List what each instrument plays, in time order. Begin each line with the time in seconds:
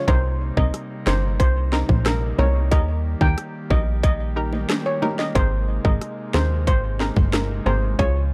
0.08 analog synth bass C2, pipe organ C3 G3 A#3 D#4, synth pluck C4 D#4 A#4, steel pan C5, kick, closed hi-hat
0.57 analog synth bass C2, synth pluck C4 D#4 A#4, steel pan D#5, kick
0.74 cross-stick, closed hi-hat
1.06 analog synth bass G1, synth pluck C4 D#4 A#4, steel pan C5, cross-stick, snare, low bongo
1.40 analog synth bass C2, steel pan C5, kick, closed hi-hat
1.72 synth pluck C4 D#4 A#4, snare
1.89 analog synth bass A#1, kick, high bongo
2.05 steel pan A#4, cross-stick, snare, closed hi-hat, high bongo
2.38 analog synth bass C2, synth pluck C4 D#4 A#4, steel pan C#5, high bongo, low bongo
2.71 analog synth bass D#2, pipe organ D#3 G3 G4, synth pluck D#4 G4 A#4, steel pan D#5, kick, closed hi-hat
3.21 analog synth bass D#2, synth pluck D#4 G4 A#4, steel pan G5, kick
3.38 cross-stick, closed hi-hat
3.70 analog synth bass A#1, synth pluck D#4 G4 A#4, steel pan D#5, kick, low bongo
4.03 steel pan D#5, kick, closed hi-hat
4.36 synth pluck D#4 G4 A#4
4.53 high bongo
4.69 cross-stick, snare, closed hi-hat, high bongo
4.86 steel pan C#5
5.02 synth pluck D#4 G4 A#4, high bongo, low bongo
5.19 steel pan D#5, snare
5.35 analog synth bass G#1, pipe organ C3 G#3 D#4, synth pluck C4 G#4 A#4, steel pan C5, kick, closed hi-hat
5.85 analog synth bass G#1, synth pluck C4 G#4 A#4, steel pan D#5, kick
6.01 cross-stick, closed hi-hat
6.34 analog synth bass D#2, synth pluck C4 G#4 A#4, steel pan C5, cross-stick, snare, low bongo
6.67 analog synth bass G#1, steel pan C5, kick, closed hi-hat
7.00 synth pluck C4 G#4 A#4, snare
7.16 analog synth bass G1, kick, high bongo
7.33 steel pan A#4, cross-stick, snare, closed hi-hat, high bongo
7.66 analog synth bass G#1, synth pluck C4 G#4 A#4, steel pan C5, high bongo, low bongo
7.99 analog synth bass C#2, pipe organ C#3 F3 F4, synth pluck C#4 F4 G#4, steel pan C#5, kick, closed hi-hat